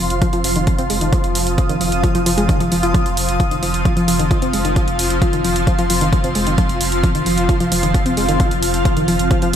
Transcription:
Already playing: synth drone F3 F4, ambient pad C4 F4 F5 C6
0.10 sub bass F1, closed hi-hat
0.22 synth arpeggio sound F3, kick, closed hi-hat
0.33 sub bass F1, synth arpeggio sound F3, closed hi-hat
0.44 sub bass F1, synth arpeggio sound F3, open hi-hat
0.56 sub bass F1, synth arpeggio sound D#3, closed hi-hat
0.67 synth arpeggio sound F3, kick, closed hi-hat
0.75 sub bass F1, synth arpeggio sound C4, ambient pad D#6, closed hi-hat
0.90 sub bass F1, synth arpeggio sound G#3, open hi-hat
1.01 sub bass F1, synth arpeggio sound D#3, closed hi-hat
1.13 synth arpeggio sound F3, kick, closed hi-hat
1.24 sub bass F1, closed hi-hat
1.35 sub bass F1, open hi-hat
1.47 sub bass F1, closed hi-hat
1.58 synth arpeggio sound F3, kick, closed hi-hat
1.69 sub bass F1, synth arpeggio sound D#3, closed hi-hat
1.81 sub bass F1, synth arpeggio sound F3, open hi-hat
1.92 sub bass F1, closed hi-hat
2.03 synth arpeggio sound F3, kick, closed hi-hat
2.15 sub bass F1, synth arpeggio sound F3, closed hi-hat
2.26 sub bass F1, synth arpeggio sound F3, open hi-hat
2.38 sub bass F1, synth arpeggio sound G#3, closed hi-hat
2.49 synth arpeggio sound D#3, kick, closed hi-hat
2.60 sub bass F1, synth arpeggio sound F3, closed hi-hat
2.71 sub bass F1, synth arpeggio sound F3, open hi-hat
2.83 sub bass F1, synth arpeggio sound F4, closed hi-hat
2.94 synth arpeggio sound F3, kick, closed hi-hat
3.06 sub bass F1, closed hi-hat
3.17 sub bass F1, open hi-hat
3.29 sub bass F1, closed hi-hat
3.40 synth arpeggio sound F3, kick, closed hi-hat
3.51 sub bass F1, synth arpeggio sound D#3, closed hi-hat
3.62 sub bass F1, synth arpeggio sound F3, open hi-hat
3.74 sub bass F1, closed hi-hat
3.85 synth arpeggio sound F3, kick, closed hi-hat
3.97 sub bass F1, synth arpeggio sound F3, closed hi-hat
4.08 sub bass F1, synth arpeggio sound F3, open hi-hat
4.19 sub bass F1, synth arpeggio sound D#3, closed hi-hat
4.31 synth arpeggio sound F3, kick, closed hi-hat
4.39 sub bass F1, synth arpeggio sound C4, ambient pad C6, closed hi-hat
4.53 sub bass F1, synth arpeggio sound G#3, open hi-hat
4.65 sub bass F1, synth arpeggio sound D#3, closed hi-hat
4.76 synth arpeggio sound F3, kick, closed hi-hat
4.87 sub bass F1, closed hi-hat
4.99 sub bass F1, open hi-hat
5.10 sub bass F1, closed hi-hat
5.22 synth arpeggio sound F3, kick, closed hi-hat
5.33 sub bass F1, synth arpeggio sound D#3, closed hi-hat
5.44 sub bass F1, synth arpeggio sound F3, open hi-hat
5.56 sub bass F1, closed hi-hat
5.67 synth arpeggio sound F3, kick, closed hi-hat
5.79 sub bass F1, synth arpeggio sound F3, closed hi-hat
5.90 sub bass F1, synth arpeggio sound F3, open hi-hat
6.01 sub bass F1, synth arpeggio sound D#3, closed hi-hat
6.13 synth arpeggio sound F3, kick, closed hi-hat
6.24 sub bass F1, synth arpeggio sound C4, closed hi-hat
6.35 sub bass F1, synth arpeggio sound G#3, open hi-hat
6.47 sub bass F1, synth arpeggio sound D#3, closed hi-hat
6.58 synth arpeggio sound F3, kick, closed hi-hat
6.69 sub bass F1, closed hi-hat
6.81 sub bass F1, open hi-hat
6.92 sub bass F1, closed hi-hat
7.04 synth arpeggio sound F3, kick, closed hi-hat
7.15 sub bass F1, synth arpeggio sound D#3, closed hi-hat
7.26 sub bass F1, synth arpeggio sound F3, open hi-hat
7.37 sub bass F1, closed hi-hat
7.49 synth arpeggio sound F3, kick, closed hi-hat
7.60 sub bass F1, synth arpeggio sound F3, closed hi-hat
7.71 sub bass F1, synth arpeggio sound F3, open hi-hat
7.83 sub bass F1, synth arpeggio sound D#3, closed hi-hat
7.94 synth arpeggio sound F3, kick, closed hi-hat
8.03 sub bass F1, synth arpeggio sound C4, ambient pad F6, closed hi-hat
8.17 sub bass F1, synth arpeggio sound G#3, open hi-hat
8.28 sub bass F1, synth arpeggio sound D#3, closed hi-hat
8.40 synth arpeggio sound F3, kick, closed hi-hat
8.51 sub bass F1, closed hi-hat
8.62 sub bass F1, open hi-hat
8.74 sub bass F1, closed hi-hat
8.85 synth arpeggio sound F3, kick, closed hi-hat
8.97 sub bass F1, synth arpeggio sound D#3, closed hi-hat
9.08 sub bass F1, synth arpeggio sound F3, open hi-hat
9.19 sub bass F1, closed hi-hat
9.31 synth arpeggio sound F3, kick, closed hi-hat
9.42 sub bass F1, synth arpeggio sound F3, closed hi-hat

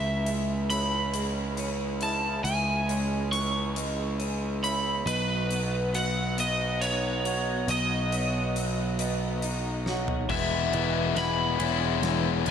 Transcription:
Already playing: picked electric bass C#2, clean electric guitar C#3, string section G#3 C#4 E4, overdriven electric guitar E5, vibraphone E5
0.26 clean electric guitar G#3, closed hi-hat
0.70 clean electric guitar E3, vibraphone C#5, overdriven electric guitar B5, closed hi-hat
1.14 clean electric guitar G#3, closed hi-hat
1.57 clean electric guitar C#4, vibraphone C#5, closed hi-hat
2.01 clean electric guitar E4, overdriven electric guitar A5, closed hi-hat
2.44 picked electric bass C#2, clean electric guitar C#3, vibraphone E5, overdriven electric guitar G#5, closed hi-hat
2.88 clean electric guitar G#3, vibraphone C#5, closed hi-hat
3.32 clean electric guitar E3, overdriven electric guitar C#6, closed hi-hat
3.75 clean electric guitar G#3, vibraphone D#5, closed hi-hat
4.19 clean electric guitar C#4, closed hi-hat
4.62 clean electric guitar E4, vibraphone C#5, overdriven electric guitar B5, closed hi-hat
5.06 picked electric bass B1, clean electric guitar B2, string section B3 F#4 D#5, overdriven electric guitar B4, closed hi-hat
5.50 clean electric guitar B3, closed hi-hat
5.94 clean electric guitar F#3, vibraphone B4, overdriven electric guitar F#5, closed hi-hat
6.38 clean electric guitar B3, overdriven electric guitar D#5, closed hi-hat
6.81 clean electric guitar D#4, vibraphone B4, overdriven electric guitar C#5, closed hi-hat
7.25 clean electric guitar F#4, closed hi-hat
7.68 picked electric bass B1, clean electric guitar B2, vibraphone D#5, overdriven electric guitar D#5, closed hi-hat
8.12 clean electric guitar B3, vibraphone C#5, closed hi-hat
8.56 clean electric guitar F#3, closed hi-hat
8.99 clean electric guitar B3, vibraphone D#5, closed hi-hat
9.42 clean electric guitar D#4, closed hi-hat
9.86 clean electric guitar F#4, vibraphone C#5, snare
10.08 floor tom
10.28 picked electric bass E1, clean electric guitar E2, string section E3 B3 G#4, distorted electric guitar E3 G#3 B3 E4, vibraphone B4, overdriven electric guitar E5, kick, snare, crash
10.73 picked electric bass E1, clean electric guitar E3, distorted electric guitar E3 G#3 B3 E4, vibraphone B4, ride
11.16 picked electric bass E1, distorted electric guitar E3 G#3 B3 E4, clean electric guitar B3, overdriven electric guitar B5, snare, ride
11.59 picked electric bass E1, distorted electric guitar E3 G#3 B3 E4, clean electric guitar E4, vibraphone C#5, ride
12.02 picked electric bass E1, clean electric guitar E3, snare, ride
12.46 picked electric bass E1, distorted electric guitar E3 G#3, clean electric guitar B3, vibraphone D#5, ride

